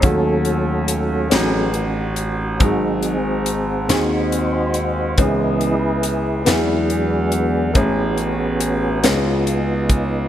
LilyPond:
<<
  \new Staff \with { instrumentName = "Tonewheel organ" } { \time 6/8 \key cis \minor \tempo 4. = 47 <fis' a'>4. gis'8 fis'8 fis'8 | <dis' gis'>4. <dis' fis' bis'>4. | <e' gis' b'>4. <b d' gis'>4. | <cis' fis'>2~ <cis' fis'>8 r8 | }
  \new Staff \with { instrumentName = "Tonewheel organ" } { \time 6/8 \key cis \minor <fis a cis'>4. <fis a cis'>8 r4 | <fis bis>8 r2 r8 | <e b dis''>8 r4 <fis gis>4. | <b gis'>4. <b dis' eis'>4. | }
  \new Staff \with { instrumentName = "Upright piano" } { \time 6/8 \key cis \minor <cis' dis' fis' a'>4 r8 <cis' dis' fis' b'>4 r8 | <bis dis' fis' gis'>4 r8 <bis dis' fis' gis'>4 r8 | <b cis' dis' e' gis'>4 r8 <b d' e' gis'>4 r8 | <a cis' e' gis'>4 r8 <b cis' eis' gis'>4 r8 | }
  \new Staff \with { instrumentName = "Upright piano" } { \clef bass \time 6/8 \key cis \minor dis4. r4. | gis,4. r4. | cis4. e4. | a,4. cis4. | }
  \new Staff \with { instrumentName = "Grand piano" } { \clef bass \time 6/8 \key cis \minor dis,4. a,,4. | gis,,4. dis,4. | cis,4. e,4. | a,,4. cis,4. | }
  \new DrumStaff \with { instrumentName = "Drums" } \drummode { \time 6/8 <hh bd>8 hh8 hh8 <hh sn>8 hh8 hh8 | <hh bd>8 hh8 hh8 <hh sn>8 hh8 hh8 | <hh bd>8 hh8 hh8 <hh sn>8 hh8 hh8 | <hh bd>8 hh8 hh8 <hh sn>8 hh8 <hh bd>8 | }
>>